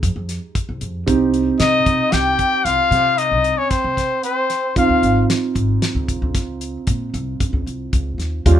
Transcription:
Already playing: G#3 D#4 G4
0.03 F2, kick, closed hi-hat
0.16 F2
0.29 snare, closed hi-hat
0.55 kick, closed hi-hat
0.69 C2
0.81 F2, closed hi-hat
1.06 C2 C4 D#4 G4, kick, closed hi-hat
1.34 closed hi-hat
1.59 C3 D#4 D#5, snare, closed hi-hat
1.86 C3, kick, closed hi-hat
2.12 C2 G4 G5, snare, closed hi-hat
2.39 kick, closed hi-hat
2.64 C2 F4 F5, snare, closed hi-hat
2.91 C3, closed hi-hat
3.18 D#4 D#5, closed hi-hat
3.31 C2
3.44 closed hi-hat
3.57 C#4 C#5
3.70 C4 C5, kick, snare, closed hi-hat
3.84 C3
3.97 kick, snare, closed hi-hat
4.22 C4 C5, closed hi-hat
4.50 snare, closed hi-hat
4.76 C#2 C4 D#4 F4 F5, kick, closed hi-hat
4.89 C#2
5.03 G#1, closed hi-hat
5.30 snare, closed hi-hat
5.55 G#1, kick, closed hi-hat
5.82 snare, closed hi-hat
5.95 C#2
6.08 kick, closed hi-hat
6.22 C#2
6.34 C#2, kick, snare, closed hi-hat
6.61 closed hi-hat
6.87 A#2, kick, closed hi-hat
7.14 C2, closed hi-hat
7.40 C#2, kick, closed hi-hat
7.53 C#2
7.66 C2, closed hi-hat
7.93 C#2, kick, closed hi-hat
8.18 D#2, snare, closed hi-hat
8.46 D#2 G3 C#4 F4, kick, closed hi-hat

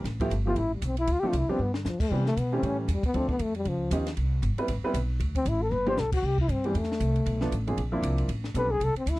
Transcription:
0.04 A1, kick, snare, ride
0.20 F3 A3 B3 E4 G4, kick, ride
0.30 G1, kick, hi-hat pedal, ride
0.47 F3 A3 B3 E4 F4 G4
0.56 A1 E4, kick, ride
0.74 G3
0.81 B1, kick, hi-hat pedal, ride
0.86 C4
0.97 E4, ride
1.07 D2, kick, ride
1.12 F4
1.20 F3 A3 C4 D4 G4 A4, muted upright bass stroke
1.29 C2 F4, kick, hi-hat pedal, ride
1.38 E4
1.48 F3 G3 B3 C4 D4 G4, muted upright bass stroke
1.59 G2 B3
1.74 D3, snare
1.85 F2 F3, snare, hi-hat pedal
2.00 A3, kick, crash
2.11 C3 E3 G3 B3 C4 G4, kick
2.26 A3, snare
2.37 B2 B3, kick, hi-hat pedal, ride
2.52 E3 G3 A3 C4 C#4 G4
2.62 A2 C#4, kick, ride
2.80 E3
2.88 E2, kick, hi-hat pedal, ride
2.92 G3
3.03 B3, muted upright bass stroke, kick, ride
3.14 D2 F3 A3 C4 D4 A4, ride
3.29 B3, kick
3.39 F2 A3, hi-hat pedal, ride
3.55 G3, ride
3.65 C#2 F3, kick, ride
3.91 D#2 F3 B3 C#4 D#4 G4, kick, hi-hat pedal, ride
4.06 snare, ride
4.17 C2, kick, ride
4.42 G1, kick, hi-hat pedal, ride
4.58 G3 B3 C4 E4 B4, ride
4.68 A1, kick, ride
4.83 G3 B3 C4 E4 B4, muted upright bass stroke
4.94 B1, kick, hi-hat pedal, ride
5.20 D2, kick, ride
5.35 C4, kick, ride
5.45 A1 E4, hi-hat pedal, ride
5.62 A4
5.71 G1 B4, high tom
5.87 F3 G3 B3 D4 G4 C5, high tom
5.97 B1 A4, snare, hi-hat pedal
6.12 F#4, kick, crash
6.22 C2, kick
6.27 G4
6.38 E4, kick
6.48 G2 C4, hi-hat pedal, ride
6.64 E3 G3 B3 C4 G4, ride
6.74 E2, kick, ride
6.78 A3
6.83 snare
6.92 snare
7.00 C2, kick, hi-hat pedal, ride
7.16 ride
7.26 B1, kick, ride
7.41 F3 A3 B3 D4 A4, snare
7.52 A1, kick, hi-hat pedal, ride
7.67 F3 A#3 C4 D4 G#4, ride
7.77 A#1, kick, ride
7.92 F3 A#3 C4 D4 E4
8.02 C2, kick, hi-hat pedal, ride
8.18 ride
8.28 A1, kick, ride
8.44 snare
8.54 B1 G3 B3 C4 D4 A4 B4, kick, hi-hat pedal, ride
8.71 G#4
8.80 C2, kick, ride
8.84 A4
8.95 C4, muted upright bass stroke, ride
9.06 D2, kick, hi-hat pedal, ride
9.10 E4
9.15 snare

